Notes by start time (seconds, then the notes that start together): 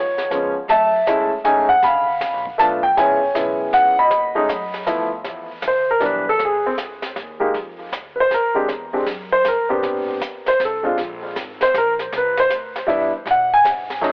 Already playing: D#2 F4 C#5
0.18 snare
0.31 F2 F3 G#3 B3 C#4, snare
0.68 F#2 E5 A5, brush sweep, snare
1.06 E2 G#3 A3 C#4 E4, snare, hi-hat pedal
1.44 D#2 G#3 A3 C#4 D#4 G#5, snare
1.69 F#5, muted upright bass stroke
1.82 D2 F5 B5, brush sweep, snare
2.20 C#2, snare, hi-hat pedal
2.33 B1
2.45 G1, kick
2.58 B1 A3 B3 D4 F4 A5, snare, hi-hat pedal
2.83 G5
2.97 A1 G#3 B3 C#4 E4 C#5 G#5, brush sweep, snare
3.35 B1 G#3 B3 C#4 E4, snare, hi-hat pedal
3.73 C#2 F#5, snare
3.99 D#5 B5
4.11 D#2, brush sweep, snare
4.35 G#3 A3 C#4 D#4
4.49 F#2, snare, hi-hat pedal
4.74 snare
4.86 G2 F3 A3 B3 E4, snare, hi-hat pedal
5.24 E2, brush sweep, snare
5.62 D2, snare, hi-hat pedal
5.68 C5
5.91 A#4
6.00 B1 E3 G3 B3 D4, snare
6.06 B4
6.29 A4
6.39 C2, brush sweep, snare
6.45 G#4
6.64 C4, muted upright bass stroke
6.77 C#2, snare, hi-hat pedal
7.02 snare
7.16 D#2, snare
7.39 G#3 A#3 D#4 G4
7.54 F2, brush sweep, snare
7.92 D2, snare, hi-hat pedal
8.15 B4
8.20 C5
8.30 D#2 A#4, snare
8.54 G#3 C4 D4 G4
8.68 E2, brush sweep, snare
8.93 G#3 C4 D4 G4
9.07 F#2, snare
9.33 C5
9.45 G2 A#4, snare, hi-hat pedal
9.69 B3 C4 D4 G4
9.83 A2, brush sweep, snare
10.21 E2, snare, hi-hat pedal
10.46 C5, snare
10.60 C2, snare
10.65 A4
10.83 G#3 C4 D4 F4
10.98 A#1, brush sweep, snare
11.36 G#1, snare, hi-hat pedal
11.61 C5, snare
11.74 A#1 A#4, snare, hi-hat pedal
11.99 snare
12.12 C2, brush sweep, snare
12.17 B4
12.37 C5, snare
12.50 D2, snare, hi-hat pedal
12.76 snare
12.87 E2 G3 B3 D4 E4, snare
13.26 B2, brush sweep, snare
13.31 F#5
13.54 G#5
13.64 G#2, snare, hi-hat pedal
13.90 snare
14.01 F#2 F#3 A3 C#4 D#4, snare